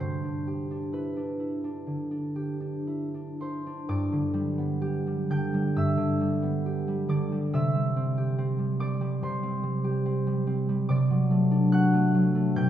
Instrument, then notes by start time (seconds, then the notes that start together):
harp
0.00 G2 C5
0.24 D4
0.48 G4
0.71 D4
0.93 E4 B4
1.16 D4
1.40 E4
1.64 D4
1.87 D3
2.11 D4
2.36 G4
2.60 D4
2.87 E4
3.14 D4
3.40 E4 C5 C6
3.66 D4
3.89 G2 D5 D6
4.12 D3
4.34 G3
4.58 B3
4.82 G4
5.07 G3
5.30 D3 G5 G6
5.54 G3
5.76 G2 E5 E6
5.97 D3
6.21 G3
6.42 B3
6.66 G4
6.88 G3
7.08 D3 D5 D6
7.32 G3
7.53 C3 E5 E6
7.75 G3
7.96 C4
8.18 G4
8.38 C4
8.59 G3
8.80 C4 D5 D6
9.01 G3
9.23 C3 C5 C6
9.43 C4
9.63 G3
9.84 G4
10.06 C4
10.27 G3
10.47 C4
10.69 G3
10.89 C3 D5 D6
11.10 F#3
11.31 A3
11.51 D4
11.72 F#4 F#5 F#6
11.93 A3
12.15 F#3
12.35 A3
12.56 B2 G5 G6